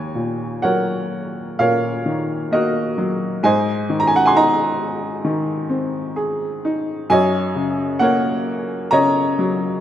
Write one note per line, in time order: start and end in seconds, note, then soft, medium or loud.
0.00 3.40 D#2 soft
0.00 0.62 C#5 soft
0.00 0.65 G#5 medium
0.15 1.58 A#2 soft
0.62 2.48 F#3 soft
0.62 1.59 A#4 soft
0.62 1.59 C#5 soft
0.62 1.62 F#5 medium
1.59 3.40 A#2 soft
1.59 2.52 A#4 soft
1.59 3.40 C#5 medium
1.59 2.48 F5 medium
2.06 3.40 D#3 soft
2.51 3.41 A#3 soft
2.51 3.40 F#4 soft
2.51 3.40 A#4 soft
2.51 3.43 D#5 medium
2.98 3.42 F#3 soft
3.43 7.05 G#2 medium
3.43 5.20 C5 medium
3.43 4.36 D#5 medium
3.43 3.96 G#5 medium
3.90 5.23 D#3 soft
4.00 4.09 A#5 medium
4.07 4.17 G#5 medium
4.16 4.25 F#5 medium
4.26 4.34 G#5 medium
4.26 4.34 C6 medium
4.34 6.12 D#4 medium
4.34 6.13 D#5 medium
4.34 6.13 A#5 medium
5.25 7.06 D#3 medium
5.70 7.06 C4 medium
6.16 7.07 G#4 medium
6.65 7.09 D#4 medium
7.10 9.80 F#2 medium
7.10 8.01 C#5 medium
7.10 8.88 D#5 medium
7.10 8.03 G#5 medium
7.55 8.90 C#3 medium
7.99 9.80 A#3 medium
7.99 9.80 A#4 medium
7.99 8.91 C#5 medium
7.99 8.87 F#5 medium
8.91 9.80 C#3 medium
8.91 9.80 C#5 medium
8.91 9.80 D#5 medium
8.91 9.80 A#5 medium
9.39 9.80 F#3 medium